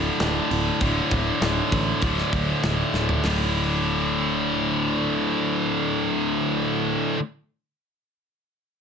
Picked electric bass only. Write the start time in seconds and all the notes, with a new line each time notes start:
0.20 D1
0.51 D1
0.81 D1
1.11 D1
1.41 D1
1.72 A1
2.02 D1
2.33 D1
2.63 D1
2.94 D1
3.25 D1